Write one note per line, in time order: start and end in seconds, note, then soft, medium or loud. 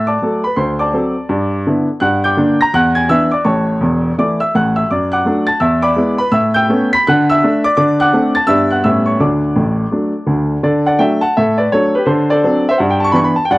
0.00 0.16 A2 medium
0.07 0.41 D5 soft
0.07 0.41 A5 soft
0.07 0.43 D6 medium
0.22 0.42 F#3 soft
0.22 0.42 A3 soft
0.22 0.42 A4 soft
0.44 0.58 B4 soft
0.44 0.57 B5 medium
0.56 0.87 D2 medium
0.56 0.78 C5 soft
0.56 0.79 C6 medium
0.79 1.84 D5 medium
0.79 1.84 A5 medium
0.79 1.87 D6 medium
0.93 1.13 F#3 soft
0.93 1.13 C4 soft
0.93 1.14 A4 soft
1.29 1.60 G2 medium
1.67 1.86 D3 soft
1.67 1.87 B3 soft
1.67 1.87 E4 soft
2.00 2.32 G2 medium
2.00 2.22 F#5 medium
2.00 2.23 F#6 medium
2.24 2.58 G5 medium
2.24 2.58 D6 medium
2.24 2.60 G6 medium
2.37 2.57 D3 soft
2.37 2.57 A#3 soft
2.37 2.57 D4 medium
2.61 2.74 A#5 medium
2.61 2.74 A#6 medium
2.74 3.04 E2 medium
2.74 2.95 F#5 medium
2.74 2.96 F#6 loud
2.95 3.09 G#5 medium
2.95 3.09 G#6 medium
3.09 3.29 E3 soft
3.09 3.29 B3 soft
3.09 3.30 D4 soft
3.09 3.31 E5 medium
3.09 3.32 E6 medium
3.31 3.45 D5 medium
3.31 3.45 D6 medium
3.44 3.74 A1 soft
3.44 3.74 A2 medium
3.44 4.13 C#5 medium
3.44 4.13 A5 medium
3.44 4.17 C#6 medium
3.81 4.10 E1 medium
3.81 4.10 E2 medium
4.18 4.38 E3 soft
4.18 4.38 A3 soft
4.18 4.38 E4 soft
4.18 4.39 D5 soft
4.18 4.40 D6 medium
4.40 4.52 E5 medium
4.40 4.53 E6 medium
4.55 4.83 A1 soft
4.55 4.83 A2 medium
4.55 4.75 F#5 medium
4.55 4.76 F#6 medium
4.76 4.88 E5 soft
4.76 4.89 E6 medium
4.91 5.21 F#2 soft
4.91 5.11 D5 medium
4.91 5.12 D6 medium
5.12 5.46 F#5 medium
5.12 5.46 D6 medium
5.12 5.47 F#6 medium
5.25 5.45 F#3 soft
5.25 5.45 A3 soft
5.25 5.46 D4 soft
5.47 5.60 A5 medium
5.47 5.60 A6 medium
5.60 5.91 E2 medium
5.60 5.82 E5 medium
5.60 5.83 E6 medium
5.82 6.17 D5 medium
5.82 6.16 B5 medium
5.82 6.19 D6 medium
5.96 6.16 G#3 soft
5.96 6.16 B3 soft
5.96 6.17 E4 soft
6.18 6.32 B4 medium
6.18 6.32 B5 medium
6.32 6.63 A2 medium
6.32 6.54 E5 medium
6.32 6.54 E6 medium
6.54 6.89 G5 medium
6.54 6.89 E6 medium
6.54 6.90 G6 loud
6.69 6.89 A3 soft
6.69 6.89 B3 medium
6.69 6.89 C#4 medium
6.93 7.05 B5 medium
6.93 7.05 B6 loud
7.07 7.37 D3 medium
7.07 7.28 F#5 medium
7.07 7.28 F#6 loud
7.30 7.63 E5 medium
7.30 7.64 E6 loud
7.44 7.63 A3 soft
7.44 7.63 D4 medium
7.64 7.76 D5 medium
7.64 7.75 D6 loud
7.77 8.07 D3 medium
7.77 7.98 D5 medium
7.77 7.99 D6 medium
8.00 8.33 F#5 medium
8.00 8.34 D6 medium
8.00 8.35 F#6 loud
8.13 8.33 A3 soft
8.13 8.33 C4 soft
8.13 8.33 D4 soft
8.35 8.48 A5 medium
8.35 8.48 A6 medium
8.47 8.78 G2 medium
8.47 8.68 G3 soft
8.47 8.67 B3 soft
8.47 8.68 D4 soft
8.47 8.69 E5 medium
8.47 8.70 E6 loud
8.71 8.84 F#5 medium
8.71 8.84 F#6 medium
8.84 9.15 A2 medium
8.84 9.04 G3 soft
8.84 9.05 B3 soft
8.84 9.05 C#4 soft
8.84 9.06 E5 medium
8.84 9.06 E6 medium
9.06 9.19 C#5 soft
9.06 9.20 C#6 medium
9.20 9.49 D2 soft
9.20 9.49 D3 soft
9.20 10.47 D5 soft
9.20 10.47 A5 soft
9.20 10.50 D6 medium
9.56 9.84 A1 medium
9.56 9.85 A2 medium
9.92 10.11 F#3 soft
9.92 10.12 A3 soft
9.92 10.12 D4 soft
10.26 10.56 D2 medium
10.26 10.56 D3 soft
10.63 10.94 D3 medium
10.63 10.85 A4 soft
10.63 10.86 D5 medium
10.86 10.99 D5 medium
10.86 11.00 F#5 medium
10.99 11.19 F#3 soft
10.99 11.19 A3 soft
10.99 11.20 D4 soft
10.99 11.21 E5 medium
10.99 11.22 G5 medium
11.21 11.35 F#5 medium
11.21 11.35 A5 medium
11.37 11.67 A2 medium
11.37 11.58 A4 medium
11.37 11.59 E5 medium
11.58 11.71 B4 soft
11.58 11.71 D5 medium
11.72 11.92 F#3 soft
11.72 11.92 A3 soft
11.72 11.93 D4 soft
11.72 11.93 A4 medium
11.72 11.94 C#5 medium
11.95 12.08 G4 medium
11.95 12.08 B4 medium
12.06 12.37 D3 medium
12.06 12.28 A4 medium
12.06 12.29 C5 medium
12.30 12.66 A4 medium
12.30 12.67 D5 medium
12.44 12.64 F#3 soft
12.44 12.64 C4 soft
12.44 12.64 D4 medium
12.69 12.78 C5 medium
12.69 12.78 E5 medium
12.78 13.10 G2 medium
12.78 12.89 F#5 medium
12.90 13.00 G5 medium
13.00 13.06 A5 medium
13.04 13.10 C#6 medium
13.12 13.34 E3 medium
13.12 13.34 B3 medium
13.12 13.34 D4 soft
13.12 13.17 B5 medium
13.12 13.25 C#6 medium
13.24 13.36 B5 medium
13.36 13.44 A5 medium
13.45 13.52 G5 medium
13.51 13.58 G2 medium
13.51 13.58 D5 medium
13.51 13.58 F#5 medium